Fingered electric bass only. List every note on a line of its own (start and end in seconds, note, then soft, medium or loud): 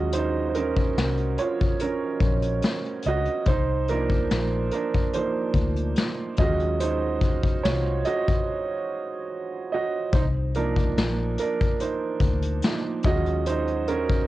0.00 0.93 D#2 medium
0.98 1.36 C2 medium
2.21 2.60 A#1 loud
3.06 3.27 C#2 medium
3.47 4.26 C2 loud
4.31 4.69 A#1 loud
5.55 5.93 D2 medium
6.39 7.59 D#2 loud
7.65 8.03 C2 medium
10.13 10.93 C2 loud
10.97 11.35 A#1 medium
12.21 12.60 D2 medium
13.05 14.26 D#2 medium